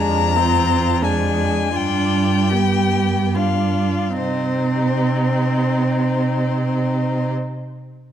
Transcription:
0, 0, Header, 1, 5, 480
1, 0, Start_track
1, 0, Key_signature, -3, "minor"
1, 0, Tempo, 1298701
1, 384, Tempo, 1470588
1, 864, Tempo, 1671309
1, 1344, Tempo, 1515152
1, 1345, Time_signature, 6, 3, 24, 8
1, 2593, End_track
2, 0, Start_track
2, 0, Title_t, "Violin"
2, 0, Program_c, 0, 40
2, 0, Note_on_c, 0, 82, 62
2, 385, Note_on_c, 0, 80, 52
2, 390, Note_off_c, 0, 82, 0
2, 620, Note_on_c, 0, 79, 54
2, 625, Note_off_c, 0, 80, 0
2, 1108, Note_on_c, 0, 77, 40
2, 1112, Note_off_c, 0, 79, 0
2, 1345, Note_off_c, 0, 77, 0
2, 1347, Note_on_c, 0, 72, 38
2, 2340, Note_off_c, 0, 72, 0
2, 2593, End_track
3, 0, Start_track
3, 0, Title_t, "Violin"
3, 0, Program_c, 1, 40
3, 0, Note_on_c, 1, 62, 39
3, 133, Note_on_c, 1, 65, 36
3, 139, Note_off_c, 1, 62, 0
3, 378, Note_on_c, 1, 62, 35
3, 384, Note_off_c, 1, 65, 0
3, 610, Note_off_c, 1, 62, 0
3, 612, Note_on_c, 1, 65, 35
3, 862, Note_on_c, 1, 67, 31
3, 867, Note_off_c, 1, 65, 0
3, 1105, Note_on_c, 1, 65, 24
3, 1109, Note_off_c, 1, 67, 0
3, 1340, Note_off_c, 1, 65, 0
3, 1342, Note_on_c, 1, 63, 33
3, 2334, Note_off_c, 1, 63, 0
3, 2593, End_track
4, 0, Start_track
4, 0, Title_t, "Viola"
4, 0, Program_c, 2, 41
4, 0, Note_on_c, 2, 56, 42
4, 135, Note_on_c, 2, 60, 34
4, 141, Note_off_c, 2, 56, 0
4, 379, Note_on_c, 2, 56, 34
4, 384, Note_off_c, 2, 60, 0
4, 610, Note_off_c, 2, 56, 0
4, 612, Note_on_c, 2, 62, 35
4, 866, Note_on_c, 2, 59, 29
4, 870, Note_off_c, 2, 62, 0
4, 1107, Note_on_c, 2, 62, 24
4, 1111, Note_off_c, 2, 59, 0
4, 1342, Note_off_c, 2, 62, 0
4, 1344, Note_on_c, 2, 60, 36
4, 2336, Note_off_c, 2, 60, 0
4, 2593, End_track
5, 0, Start_track
5, 0, Title_t, "Cello"
5, 0, Program_c, 3, 42
5, 0, Note_on_c, 3, 41, 50
5, 532, Note_off_c, 3, 41, 0
5, 614, Note_on_c, 3, 43, 39
5, 1265, Note_off_c, 3, 43, 0
5, 1344, Note_on_c, 3, 48, 36
5, 2336, Note_off_c, 3, 48, 0
5, 2593, End_track
0, 0, End_of_file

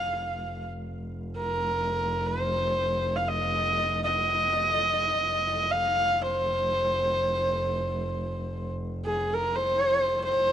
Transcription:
0, 0, Header, 1, 3, 480
1, 0, Start_track
1, 0, Tempo, 500000
1, 10103, End_track
2, 0, Start_track
2, 0, Title_t, "Horsehead fiddle"
2, 0, Program_c, 0, 110
2, 0, Note_on_c, 0, 77, 88
2, 671, Note_off_c, 0, 77, 0
2, 1307, Note_on_c, 0, 70, 77
2, 2168, Note_on_c, 0, 72, 81
2, 2183, Note_off_c, 0, 70, 0
2, 3033, Note_on_c, 0, 77, 66
2, 3047, Note_off_c, 0, 72, 0
2, 3152, Note_on_c, 0, 75, 84
2, 3166, Note_off_c, 0, 77, 0
2, 3862, Note_off_c, 0, 75, 0
2, 3878, Note_on_c, 0, 75, 89
2, 5483, Note_on_c, 0, 77, 91
2, 5497, Note_off_c, 0, 75, 0
2, 5969, Note_on_c, 0, 72, 87
2, 5983, Note_off_c, 0, 77, 0
2, 8363, Note_off_c, 0, 72, 0
2, 8687, Note_on_c, 0, 68, 75
2, 8964, Note_on_c, 0, 70, 80
2, 8978, Note_off_c, 0, 68, 0
2, 9168, Note_on_c, 0, 72, 90
2, 9183, Note_off_c, 0, 70, 0
2, 9826, Note_off_c, 0, 72, 0
2, 9837, Note_on_c, 0, 72, 96
2, 10103, Note_off_c, 0, 72, 0
2, 10103, End_track
3, 0, Start_track
3, 0, Title_t, "Double bass"
3, 0, Program_c, 1, 43
3, 41, Note_on_c, 1, 29, 64
3, 5017, Note_off_c, 1, 29, 0
3, 5023, Note_on_c, 1, 29, 62
3, 9982, Note_off_c, 1, 29, 0
3, 9987, Note_on_c, 1, 29, 65
3, 10103, Note_off_c, 1, 29, 0
3, 10103, End_track
0, 0, End_of_file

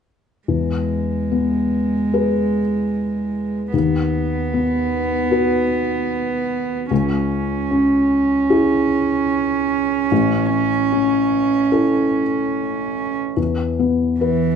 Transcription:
0, 0, Header, 1, 3, 480
1, 0, Start_track
1, 0, Key_signature, 4, "major"
1, 0, Tempo, 820793
1, 284, Time_signature, 4, 2, 24, 8
1, 1244, Tempo, 798935
1, 7004, Tempo, 829876
1, 8648, End_track
2, 0, Start_track
2, 0, Title_t, "Felt piano"
2, 0, Program_c, 0, 0
2, 282, Note_on_c, 0, 40, 32
2, 402, Control_c, 0, 64, 127
2, 769, Note_on_c, 0, 59, 28
2, 1249, Note_on_c, 0, 71, 33
2, 1250, Note_on_c, 0, 68, 27
2, 1536, Note_off_c, 0, 59, 0
2, 2180, Note_off_c, 0, 40, 0
2, 2184, Note_off_c, 0, 68, 0
2, 2184, Note_off_c, 0, 71, 0
2, 2210, Note_on_c, 0, 39, 41
2, 2217, Control_c, 0, 64, 0
2, 2330, Control_c, 0, 64, 127
2, 2692, Note_on_c, 0, 59, 32
2, 3156, Note_on_c, 0, 66, 34
2, 3161, Note_on_c, 0, 71, 37
2, 3446, Note_off_c, 0, 59, 0
2, 4086, Note_off_c, 0, 66, 0
2, 4089, Note_off_c, 0, 71, 0
2, 4090, Note_off_c, 0, 39, 0
2, 4116, Note_on_c, 0, 37, 47
2, 4124, Control_c, 0, 64, 0
2, 4211, Control_c, 0, 64, 127
2, 4598, Note_on_c, 0, 61, 37
2, 5072, Note_on_c, 0, 64, 42
2, 5073, Note_on_c, 0, 68, 45
2, 5362, Note_off_c, 0, 61, 0
2, 6014, Note_off_c, 0, 64, 0
2, 6015, Note_off_c, 0, 68, 0
2, 6017, Note_off_c, 0, 37, 0
2, 6042, Note_on_c, 0, 33, 46
2, 6050, Control_c, 0, 64, 0
2, 6150, Control_c, 0, 64, 127
2, 6529, Note_on_c, 0, 61, 38
2, 7007, Note_on_c, 0, 64, 31
2, 7007, Note_on_c, 0, 69, 36
2, 7289, Note_off_c, 0, 61, 0
2, 7940, Note_off_c, 0, 33, 0
2, 7940, Note_off_c, 0, 64, 0
2, 7940, Note_off_c, 0, 69, 0
2, 7960, Note_on_c, 0, 40, 39
2, 7972, Control_c, 0, 64, 0
2, 8054, Control_c, 0, 64, 127
2, 8206, Note_on_c, 0, 59, 29
2, 8448, Note_on_c, 0, 71, 34
2, 8591, Note_off_c, 0, 59, 0
2, 8648, Note_off_c, 0, 40, 0
2, 8648, Note_off_c, 0, 71, 0
2, 8648, End_track
3, 0, Start_track
3, 0, Title_t, "Cello"
3, 0, Program_c, 1, 42
3, 280, Note_on_c, 1, 56, 44
3, 2179, Note_off_c, 1, 56, 0
3, 2212, Note_on_c, 1, 59, 47
3, 4092, Note_off_c, 1, 59, 0
3, 4120, Note_on_c, 1, 61, 59
3, 7824, Note_off_c, 1, 61, 0
3, 8444, Note_on_c, 1, 52, 57
3, 8648, Note_off_c, 1, 52, 0
3, 8648, End_track
0, 0, End_of_file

